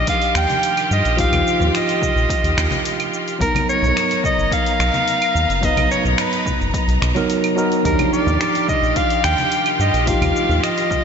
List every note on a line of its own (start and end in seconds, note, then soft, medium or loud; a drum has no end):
0.00 3.37 D#3 medium
0.00 0.87 F3 medium
0.00 0.87 D4 medium
0.00 0.88 D#4 medium
0.00 3.37 F4 medium
0.00 0.89 G4 medium
0.00 3.37 G4 medium
0.00 3.37 F5 medium
0.07 0.34 F5 loud
0.07 kick loud
0.07 open hi-hat medium
0.07 cabasa soft
0.22 open hi-hat soft
0.22 cabasa soft
0.35 0.46 D#2 loud
0.35 0.95 G5 loud
0.35 finger snap medium
0.35 cabasa medium
0.50 open hi-hat soft
0.50 high conga medium
0.50 cabasa soft
0.63 open hi-hat medium
0.63 cabasa soft
0.77 open hi-hat soft
0.77 cabasa soft
0.77 claves medium
0.91 1.02 G2 loud
0.91 1.20 D#5 loud
0.91 cabasa medium
1.05 1.27 A#1 medium
1.05 open hi-hat soft
1.05 cabasa soft
1.16 3.09 F3 medium
1.16 3.10 D#4 medium
1.16 3.09 F4 medium
1.16 3.11 G4 medium
1.16 1.71 F5 loud
1.16 kick loud
1.16 open hi-hat medium
1.16 cabasa soft
1.32 1.43 D#2 medium
1.32 open hi-hat soft
1.32 high conga loud
1.32 cabasa soft
1.32 claves medium
1.47 cabasa medium
1.60 1.71 D#2 loud
1.60 low conga medium
1.60 cabasa soft
1.75 3.11 D#5 loud
1.75 finger snap medium
1.75 open hi-hat medium
1.75 cabasa soft
1.89 open hi-hat soft
1.89 cabasa soft
2.02 kick loud
2.02 high conga medium
2.02 cabasa medium
2.15 2.27 A#1 medium
2.15 cabasa soft
2.30 kick loud
2.30 open hi-hat medium
2.30 cabasa soft
2.43 2.54 D#2 medium
2.43 open hi-hat soft
2.43 cabasa soft
2.57 2.69 D#2 loud
2.57 finger snap medium
2.57 kick medium
2.57 cabasa medium
2.71 open hi-hat soft
2.71 high conga loud
2.71 cabasa soft
2.85 open hi-hat medium
2.85 cabasa soft
3.00 open hi-hat soft
3.00 cabasa soft
3.00 claves medium
3.14 cabasa medium
3.28 open hi-hat soft
3.28 cabasa soft
3.39 3.52 B1 loud
3.39 5.31 F#3 medium
3.39 5.31 B3 medium
3.39 7.82 B3 medium
3.39 5.32 D#4 medium
3.39 7.82 D#4 medium
3.39 3.67 A#4 loud
3.39 5.33 A#4 medium
3.39 7.82 A#5 medium
3.39 kick loud
3.39 open hi-hat medium
3.39 cabasa soft
3.55 open hi-hat soft
3.55 high conga loud
3.55 cabasa soft
3.55 claves medium
3.69 4.21 C#5 loud
3.69 cabasa medium
3.82 3.93 B1 loud
3.82 low conga medium
3.82 cabasa soft
3.97 finger snap medium
3.97 open hi-hat medium
3.97 cabasa soft
4.11 open hi-hat soft
4.11 cabasa soft
4.24 4.51 D#5 loud
4.24 kick loud
4.24 high conga medium
4.24 cabasa medium
4.38 4.49 F#1 medium
4.38 cabasa soft
4.52 5.66 F5 loud
4.52 kick loud
4.52 open hi-hat medium
4.52 cabasa soft
4.66 open hi-hat soft
4.66 cabasa soft
4.79 4.91 B1 medium
4.79 finger snap medium
4.79 cabasa medium
4.94 open hi-hat soft
4.94 high conga medium
4.94 cabasa soft
5.08 open hi-hat medium
5.08 cabasa soft
5.22 open hi-hat soft
5.22 cabasa soft
5.22 claves medium
5.35 5.46 D#2 medium
5.35 cabasa medium
5.49 5.71 F#1 medium
5.49 open hi-hat soft
5.49 cabasa soft
5.61 7.12 F#3 medium
5.61 7.13 B3 medium
5.61 7.14 D#4 medium
5.61 5.91 D#5 loud
5.61 kick loud
5.61 open hi-hat medium
5.61 cabasa soft
5.65 7.14 B4 medium
5.76 5.88 B1 medium
5.76 open hi-hat soft
5.76 high conga medium
5.76 cabasa soft
5.76 claves medium
5.92 6.04 C#5 medium
5.92 cabasa medium
6.04 6.16 B1 loud
6.04 low conga medium
6.04 cabasa soft
6.18 6.71 B4 medium
6.18 finger snap medium
6.18 open hi-hat medium
6.18 cabasa soft
6.33 open hi-hat soft
6.33 cabasa soft
6.46 kick loud
6.46 high conga medium
6.46 cabasa medium
6.60 6.71 F#1 medium
6.60 cabasa soft
6.74 kick loud
6.74 open hi-hat medium
6.74 cabasa soft
6.88 6.99 B1 medium
6.88 open hi-hat soft
6.88 cabasa soft
7.01 7.13 B1 loud
7.01 finger snap medium
7.01 kick medium
7.01 cabasa medium
7.15 7.23 F#3 medium
7.15 7.23 B3 medium
7.15 7.23 D#4 medium
7.15 7.24 A#4 loud
7.15 open hi-hat soft
7.15 high conga medium
7.15 cabasa soft
7.30 open hi-hat medium
7.30 cabasa soft
7.44 open hi-hat soft
7.44 cabasa soft
7.44 claves medium
7.56 7.81 F#3 medium
7.56 7.82 B3 medium
7.56 7.82 D#4 medium
7.56 7.82 A#4 loud
7.56 cabasa medium
7.72 open hi-hat soft
7.72 cabasa soft
7.83 7.96 D#2 loud
7.83 11.04 D#3 medium
7.83 9.75 F3 medium
7.83 9.76 D4 medium
7.83 9.77 D#4 medium
7.83 11.04 F4 medium
7.83 11.04 G4 medium
7.83 9.77 G4 medium
7.83 8.12 A#4 medium
7.83 11.04 F5 medium
7.83 kick loud
7.83 open hi-hat medium
7.83 cabasa soft
7.99 open hi-hat soft
7.99 high conga loud
7.99 cabasa soft
7.99 claves medium
8.13 8.65 D5 loud
8.13 cabasa medium
8.27 8.38 D#2 loud
8.27 low conga medium
8.27 cabasa soft
8.41 finger snap medium
8.41 open hi-hat medium
8.41 cabasa soft
8.55 open hi-hat soft
8.55 cabasa soft
8.68 8.98 D#5 loud
8.68 kick loud
8.68 high conga medium
8.68 cabasa medium
8.82 8.93 A#1 medium
8.82 cabasa soft
8.96 9.24 F5 loud
8.96 kick loud
8.96 open hi-hat medium
8.96 cabasa soft
9.10 open hi-hat soft
9.10 cabasa soft
9.24 9.35 D#2 loud
9.24 9.83 G5 loud
9.24 finger snap medium
9.24 cabasa medium
9.38 open hi-hat soft
9.38 high conga medium
9.38 cabasa soft
9.52 open hi-hat medium
9.52 cabasa soft
9.66 open hi-hat soft
9.66 cabasa soft
9.66 claves medium
9.79 9.91 G2 loud
9.79 10.09 D#5 loud
9.79 cabasa medium
9.93 10.16 A#1 medium
9.93 open hi-hat soft
9.93 cabasa soft
10.06 11.04 F3 medium
10.06 11.04 D#4 medium
10.06 11.04 F4 medium
10.06 11.04 G4 medium
10.06 10.63 F5 loud
10.06 kick loud
10.06 open hi-hat medium
10.06 cabasa soft
10.21 10.32 D#2 loud
10.21 open hi-hat soft
10.21 high conga medium
10.21 cabasa soft
10.21 claves medium
10.36 cabasa medium
10.49 10.60 D#2 loud
10.49 low conga medium
10.49 cabasa soft
10.63 11.04 D#5 loud
10.63 finger snap medium
10.63 open hi-hat medium
10.63 cabasa soft
10.78 open hi-hat soft
10.78 cabasa soft
10.91 kick loud
10.91 high conga medium
10.91 cabasa medium